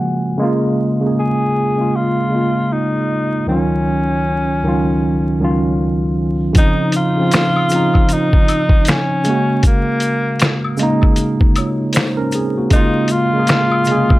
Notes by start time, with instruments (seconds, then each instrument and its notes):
Already playing: tine electric piano C#3 F3 G#3 A#3 F#4 F#5 G#5
0.38 tine electric piano C#3 G#3 A#3
0.43 tine electric piano F4
1.01 tine electric piano C#3 G#3
1.05 tine electric piano A#3 G#4
1.20 tenor saxophone G#4
1.76 tine electric piano C#3 G#3 A#3
1.81 tine electric piano F4
1.96 tenor saxophone F4
2.30 tine electric piano C#3 G#3 A#3
2.35 tine electric piano F4
2.73 tenor saxophone D#4
3.46 tine electric piano C#2 D#3 F#3, tenor saxophone C#4
3.50 tine electric piano C#4 F4
4.63 tine electric piano C#2 D#3 F#3
4.67 tine electric piano C#4 F4
5.39 tine electric piano C#2 D#3 F#3
5.43 tine electric piano C#4 F4
6.53 tine electric piano C#3 F3 C4, kick, closed hi-hat, shaker
6.58 tenor saxophone D#4, tine electric piano D#4
6.92 closed hi-hat, shaker
6.96 tenor saxophone F4
7.17 tine electric piano C#3 F3
7.21 tine electric piano C4 F4
7.31 finger snap, snare, closed hi-hat, shaker
7.56 high woodblock
7.69 tine electric piano C#3 F3 C4, closed hi-hat, shaker
7.75 tine electric piano D#4
7.94 kick, high woodblock
8.09 closed hi-hat, shaker
8.13 tenor saxophone D#4
8.33 kick
8.48 closed hi-hat, high woodblock, shaker
8.69 kick
8.85 finger snap, closed hi-hat, shaker
8.89 tenor saxophone C#4, snare
9.24 tine electric piano C#3 G#3 A#3, closed hi-hat, shaker
9.30 tine electric piano F#4
9.63 kick, closed hi-hat, shaker
9.67 tenor saxophone A#3
10.00 closed hi-hat, shaker
10.39 finger snap, snare, closed hi-hat, shaker
10.64 high woodblock
10.77 tine electric piano C#3 G#3 A#3, closed hi-hat, shaker
10.83 tine electric piano D#4
11.02 kick, high woodblock
11.16 closed hi-hat, shaker
11.41 kick
11.56 tine electric piano F4 C#5, closed hi-hat, high woodblock, shaker
11.93 tine electric piano D#4 C5, finger snap, closed hi-hat, shaker
11.97 snare
12.17 tine electric piano C#4 A#4
12.32 tine electric piano C4 G#4, closed hi-hat, shaker
12.57 tine electric piano A#3 F#4
12.70 tine electric piano C#3 G#3 A#3, tenor saxophone D#4, kick, closed hi-hat, shaker
12.76 tine electric piano F4
13.08 tenor saxophone F4, closed hi-hat, shaker
13.34 tine electric piano C#3 G#3 A#3
13.39 tine electric piano G#4
13.47 finger snap, snare, closed hi-hat, shaker
13.71 high woodblock
13.85 tine electric piano C3 G#3, closed hi-hat, shaker
13.90 tine electric piano C#3 A#3 G#4
14.09 kick, high woodblock